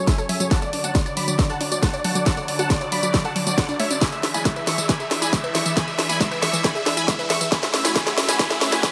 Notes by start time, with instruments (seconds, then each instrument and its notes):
Already playing: analog synth pad F#3 C#4 G#4 A4, riser
0.07 synth arpeggio sound G#3, supersaw synth E5 G#5, kick, snare, closed hi-hat, tambourine
0.18 synth arpeggio sound A4, supersaw synth C#5, closed hi-hat, tambourine
0.29 synth arpeggio sound F#3, supersaw synth E5 G#5, open hi-hat
0.40 synth arpeggio sound F#3, supersaw synth C#5, closed hi-hat, tambourine
0.51 analog synth pad D3 D4 F#4 C#5, synth arpeggio sound F#3, supersaw synth F#5 A5, kick, snare, closed hi-hat, tambourine
0.62 synth arpeggio sound A4, supersaw synth D5, closed hi-hat, mid tom, tambourine
0.73 synth arpeggio sound D4, supersaw synth D5, open hi-hat
0.84 synth arpeggio sound F#4, supersaw synth F#5 A5, closed hi-hat, mid tom, tambourine
0.95 synth arpeggio sound A3, supersaw synth D5, kick, snare, closed hi-hat, tambourine
1.06 synth arpeggio sound C#5, supersaw synth D5, closed hi-hat, tambourine
1.17 synth arpeggio sound F#3, supersaw synth D5 B5, open hi-hat
1.28 synth arpeggio sound F#3, supersaw synth D5, closed hi-hat, tambourine
1.39 synth arpeggio sound F#3, kick, snare, closed hi-hat, tambourine
1.50 synth arpeggio sound A4, supersaw synth F#5 A5, closed hi-hat, tambourine
1.61 synth arpeggio sound D4, supersaw synth D5, open hi-hat
1.72 synth arpeggio sound F#4, supersaw synth D5, closed hi-hat, mid tom, tambourine
1.83 synth arpeggio sound A3, supersaw synth F#5 A5, kick, snare, closed hi-hat, tambourine
1.94 synth arpeggio sound C#5, supersaw synth D5, closed hi-hat, tambourine
2.04 synth arpeggio sound F#3, supersaw synth F#5 A5, open hi-hat, mid tom
2.15 synth arpeggio sound F#3, supersaw synth D5, closed hi-hat, tambourine
2.26 synth arpeggio sound F#3, supersaw synth F#5 A5, kick, snare, closed hi-hat, tambourine
2.37 synth arpeggio sound A4, supersaw synth D5, closed hi-hat, mid tom, tambourine
2.48 synth arpeggio sound D4, supersaw synth D5, open hi-hat
2.59 synth arpeggio sound F#4, supersaw synth F#5 A5, closed hi-hat, mid tom, tambourine
2.70 synth arpeggio sound A3, supersaw synth D5, kick, snare, closed hi-hat, tambourine
2.81 synth arpeggio sound C#5, supersaw synth D5, closed hi-hat, tambourine
2.92 synth arpeggio sound F#3, supersaw synth D5 B5, open hi-hat
3.03 synth arpeggio sound F#3, supersaw synth D5, closed hi-hat, tambourine
3.14 synth arpeggio sound F#3, supersaw synth D5, kick, snare, closed hi-hat, tambourine
3.25 synth arpeggio sound A4, supersaw synth F#5 A5, closed hi-hat, tambourine
3.36 synth arpeggio sound F#3, supersaw synth D5, open hi-hat
3.47 synth arpeggio sound F#3, supersaw synth D5, closed hi-hat, mid tom, tambourine
3.58 synth arpeggio sound C#4, supersaw synth D5 F#5, kick, snare, closed hi-hat, tambourine
3.69 synth arpeggio sound D4, supersaw synth D5, closed hi-hat, tambourine
3.80 synth arpeggio sound A3, supersaw synth C#5 E5, open hi-hat
3.91 synth arpeggio sound C#4, supersaw synth D5, closed hi-hat, tambourine
4.01 synth arpeggio sound E3, analog synth pad E3 E4 G#4 D5, supersaw synth G#5 B5, kick, snare, closed hi-hat, tambourine
4.12 synth arpeggio sound G#4, supersaw synth E5, closed hi-hat, mid tom, tambourine
4.23 synth arpeggio sound D4, supersaw synth E5, snare, open hi-hat
4.34 synth arpeggio sound E4, supersaw synth G#5 B5, closed hi-hat, mid tom, tambourine
4.45 synth arpeggio sound G#3, supersaw synth E5, kick, snare, closed hi-hat, tambourine
4.56 synth arpeggio sound B4, supersaw synth E5, closed hi-hat, tambourine
4.67 synth arpeggio sound E3, supersaw synth E5 C#6, snare, open hi-hat
4.78 synth arpeggio sound E3, supersaw synth E5, closed hi-hat, tambourine
4.89 synth arpeggio sound E3, supersaw synth G#5 B5, kick, snare, closed hi-hat, tambourine
5.00 synth arpeggio sound G#4, supersaw synth E5, closed hi-hat, tambourine
5.11 synth arpeggio sound D4, supersaw synth E5, snare, open hi-hat
5.22 synth arpeggio sound E4, supersaw synth G#5 B5, closed hi-hat, mid tom, tambourine
5.33 synth arpeggio sound G#3, supersaw synth E5, kick, snare, closed hi-hat, tambourine
5.44 synth arpeggio sound B4, supersaw synth E5, closed hi-hat, tambourine
5.54 synth arpeggio sound E3, supersaw synth E5 C#6, snare, open hi-hat, mid tom
5.66 synth arpeggio sound E3, supersaw synth E5, closed hi-hat, tambourine
5.77 synth arpeggio sound E3, supersaw synth G#5 B5, kick, snare, closed hi-hat, tambourine
5.87 synth arpeggio sound G#4, supersaw synth E5, closed hi-hat, mid tom, tambourine
5.98 synth arpeggio sound D4, supersaw synth E5, snare, open hi-hat
6.09 synth arpeggio sound E4, supersaw synth G#5 B5, closed hi-hat, mid tom, tambourine
6.20 synth arpeggio sound G#3, supersaw synth E5, kick, snare, closed hi-hat, tambourine
6.31 synth arpeggio sound B4, supersaw synth E5, closed hi-hat, tambourine
6.42 synth arpeggio sound E3, supersaw synth E5 C#6, snare, open hi-hat
6.53 synth arpeggio sound E3, supersaw synth E5, closed hi-hat, tambourine
6.64 synth arpeggio sound E3, supersaw synth G#5 B5, kick, snare, closed hi-hat, tambourine
6.75 synth arpeggio sound G#4, supersaw synth E5, closed hi-hat, tambourine
6.86 synth arpeggio sound D4, supersaw synth E5, snare, open hi-hat
6.97 synth arpeggio sound E4, supersaw synth G#5 B5, closed hi-hat, mid tom, tambourine
7.08 synth arpeggio sound G#3, supersaw synth E5, kick, snare, closed hi-hat, tambourine
7.19 synth arpeggio sound B4, supersaw synth E5, closed hi-hat, tambourine
7.30 synth arpeggio sound E3, supersaw synth E5 C#6, snare, open hi-hat
7.41 synth arpeggio sound E3, supersaw synth E5, closed hi-hat, tambourine
7.52 synth arpeggio sound E3, analog synth pad A3 E4 F#4 C#5, supersaw synth G#5 B5, kick, snare, closed hi-hat, tambourine
7.63 synth arpeggio sound G#4, supersaw synth E5, snare, closed hi-hat, mid tom, tambourine
7.74 synth arpeggio sound C#4, supersaw synth E5, snare, open hi-hat
7.85 synth arpeggio sound E4, supersaw synth G#5 B5, snare, closed hi-hat, mid tom, tambourine
7.96 synth arpeggio sound E3, supersaw synth G#5 B5, kick, snare, closed hi-hat, tambourine
8.07 synth arpeggio sound G#4, supersaw synth E5, snare, closed hi-hat, tambourine
8.18 synth arpeggio sound C#4, supersaw synth E5, snare, open hi-hat
8.28 synth arpeggio sound E4, supersaw synth G#5 B5, snare, closed hi-hat, tambourine
8.39 synth arpeggio sound E3, supersaw synth G#5 B5, kick, snare, closed hi-hat, tambourine
8.50 synth arpeggio sound G#4, supersaw synth E5, snare, closed hi-hat, tambourine
8.61 synth arpeggio sound C#4, supersaw synth E5, snare, open hi-hat
8.72 synth arpeggio sound E4, supersaw synth G#5 B5, snare, closed hi-hat, mid tom, tambourine
8.83 synth arpeggio sound E3, supersaw synth B5, kick, snare, closed hi-hat, tambourine